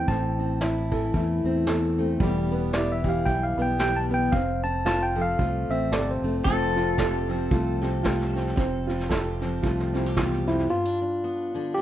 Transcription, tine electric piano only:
0.08 A5
2.74 D5
2.92 E5
3.09 F5
3.26 G5
3.43 F5
3.62 G5
3.80 G5
3.96 A5
4.14 G5
4.32 F5
4.64 A5
4.86 A5
5.03 G5
5.22 F5
5.71 E5
5.93 D5
6.11 C5
10.48 E4
10.70 F4
11.74 G4

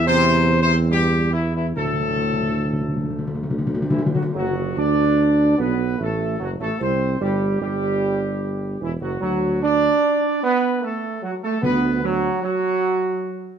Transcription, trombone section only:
0.06 C3
0.62 C3
0.88 G2
1.32 E2
1.55 E2
1.76 A2
3.90 E3
4.13 F#3
4.34 F#3
4.76 D4
5.58 B3
5.99 A3
6.38 F#3
6.60 A3
6.79 C4
7.20 G3
7.60 G3
8.80 E3
9.02 F#3
9.20 F#3
9.63 D4
10.43 B3
10.82 A3
11.22 F#3
11.43 A3
11.62 B3
12.03 F#3
12.42 F#3

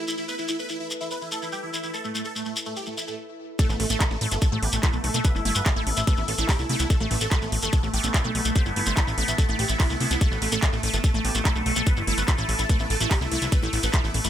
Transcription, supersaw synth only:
0.07 E4
0.18 E4
0.28 B4
0.38 E4
0.49 E4
0.59 B4
0.70 E4
0.80 E4
1.00 E4
1.11 B4
1.21 E4
1.31 A4
1.42 E4
1.52 G4
1.63 E4
1.73 E4
1.83 E4
1.94 A4
2.04 A3
2.14 A3
2.25 A4
2.35 A3
2.45 A3
2.66 A3
2.76 G4
2.87 A3
2.97 E4
3.07 A3
3.59 A4
3.69 A3
3.80 A3
3.90 A4
4.00 A3
4.11 A3
4.32 A3
4.42 A4
4.52 A3
4.62 G4
4.73 A3
4.83 E4
4.94 A3
5.04 A3
5.14 A3
5.25 B4
5.35 E4
5.45 E4
5.56 B4
5.66 E4
5.76 E4
5.97 E4
6.07 B4
6.18 E4
6.28 A4
6.38 E4
6.49 G4
6.59 E4
6.69 E4
6.80 E4
6.90 A4
7.00 A3
7.11 A3
7.21 A4
7.32 A3
7.42 A3
7.63 A3
7.73 A4
7.83 A3
7.94 G4
8.04 A3
8.14 E4
8.25 A3
8.35 A3
8.45 A3
8.56 C5
8.66 E4
8.76 E4
8.87 C5
8.97 E4
9.07 E4
9.28 E4
9.38 A4
9.49 E4
9.59 G4
9.69 E4
9.80 E4
9.90 E4
10.00 E4
10.11 E4
10.21 A4
10.32 A3
10.42 A3
10.52 A4
10.63 A3
10.73 A3
10.94 A3
11.04 A4
11.14 A3
11.25 G4
11.35 A3
11.45 E4
11.56 A3
11.66 A3
11.76 A3
11.87 B4
11.97 E4
12.07 E4
12.18 B4
12.28 E4
12.38 E4
12.59 E4
12.69 B4
12.80 E4
12.90 A4
13.00 E4
13.11 G4
13.21 E4
13.31 E4
13.42 E4
13.52 B4
13.63 E4
13.73 E4
13.83 B4
13.94 E4
14.04 E4
14.25 E4

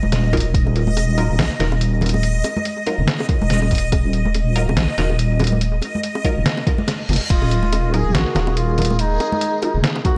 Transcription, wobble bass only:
0.03 D#1
0.54 D#1
1.29 D#1
1.39 A#1
1.60 D#1
2.98 D#1
3.41 D#1
3.92 D#1
4.67 D#1
4.77 A#1
4.98 D#1
6.36 D#1
7.09 F#1
7.30 D#1
8.05 D#1
8.15 A#1
8.36 D#1
9.74 D#1

